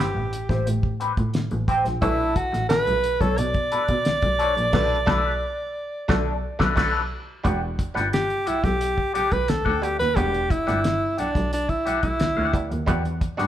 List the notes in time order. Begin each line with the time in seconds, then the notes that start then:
Already playing: B3 C4 E4 G4
0.00 snare
0.15 A1, muted clean electric guitar stroke
0.33 closed hi-hat
0.49 A1 C4 G4 C5, kick, snare, closed hi-hat
0.66 A2, muted clean electric guitar stroke, closed hi-hat
0.83 kick
1.00 A2 C4 G4 B4, closed hi-hat
1.17 A2, kick, closed hi-hat
1.34 A1, snare, closed hi-hat
1.51 A1, muted clean electric guitar stroke, closed hi-hat
1.68 C4 G4 C5, kick, closed hi-hat
1.85 A#1, muted clean electric guitar stroke, snare, closed hi-hat
2.02 B1 A3 C#4 D4 E4 F#4 A4 B4, kick, closed hi-hat
2.36 F#4, kick, closed hi-hat
2.52 A1, muted clean electric guitar stroke, snare, closed hi-hat
2.69 A3 C#4 D4 F#4 B4, muted clean electric guitar stroke, snare, closed hi-hat
2.86 B1, muted clean electric guitar stroke, closed hi-hat
3.04 closed hi-hat
3.21 B1 D4 A4 C#5, kick, snare, closed hi-hat
3.38 B2 D5, muted clean electric guitar stroke, closed hi-hat
3.54 kick, closed hi-hat
3.71 B2 D4 A4 B4, closed hi-hat
3.88 B2, kick, closed hi-hat
4.05 B1, snare, closed hi-hat
4.22 B1, muted clean electric guitar stroke, kick, closed hi-hat
4.39 D4 A4 C#5, closed hi-hat
4.56 A#1, muted clean electric guitar stroke, closed hi-hat
4.73 B1 A3 D4 F#4 A4 B4, kick, snare, crash
5.06 B1 A3 D4 F#4 A4 B4, kick, snare
6.08 B1 A3 D4 F#4 A4, kick, snare
6.59 B1 A3 D4 F#4 A4 B4, kick, snare
6.76 B1 A3 D4 F#4 A4 B4, kick, snare, crash
7.44 E1 G3 B3 D4 F#4 G4 D5 F#5, kick, closed hi-hat
7.79 muted clean electric guitar stroke, kick, closed hi-hat
7.94 G1 F#3 B3 D4 E4 G4 D5 F#5, snare, closed hi-hat
8.01 G3
8.13 G4, muted clean electric guitar stroke, snare, closed hi-hat
8.30 closed hi-hat
8.46 B1 E4 G4 D5 F#5, closed hi-hat
8.63 B1 G4, muted clean electric guitar stroke, kick, snare, closed hi-hat
8.81 closed hi-hat
8.97 muted clean electric guitar stroke, kick
9.14 B1 G4 D5 F#5, closed hi-hat
9.31 B1 B4, muted clean electric guitar stroke, kick, closed hi-hat
9.48 D2 A4, muted clean electric guitar stroke, snare, closed hi-hat
9.65 D2 G4 D5 F#5, kick
9.82 G3 B3 D4 F#4 G4, muted clean electric guitar stroke, closed hi-hat
9.99 D#2 B4, muted clean electric guitar stroke, snare, closed hi-hat
10.15 E1 G3 B3 D4 F#4 G4 D5 F#5, kick, closed hi-hat
10.34 closed hi-hat
10.50 E4, muted clean electric guitar stroke, kick, closed hi-hat
10.67 G1 G3 B3 D4 G4 D5 F#5, snare, closed hi-hat
10.84 muted clean electric guitar stroke, snare, closed hi-hat
11.17 B1 D4 G4 D5 F#5, closed hi-hat
11.35 B1, muted clean electric guitar stroke, kick, snare, closed hi-hat
11.53 D4, closed hi-hat
11.69 E4, muted clean electric guitar stroke, kick, closed hi-hat
11.85 B1 G4 D5 F#5, closed hi-hat
12.03 B1 E4, muted clean electric guitar stroke, kick, closed hi-hat
12.20 D2, muted clean electric guitar stroke, snare, closed hi-hat
12.37 D2 G4 D5 F#5
12.53 G3 B3 D4 E4, muted clean electric guitar stroke, kick, closed hi-hat
12.70 D#2, muted clean electric guitar stroke, closed hi-hat
12.86 E2 G3 B3 D4 F#4 G4 D5 F#5, kick, closed hi-hat
13.05 closed hi-hat
13.21 muted clean electric guitar stroke, kick, closed hi-hat
13.37 G2 G3 B3 D4 F#4 G4 D5 F#5, snare, closed hi-hat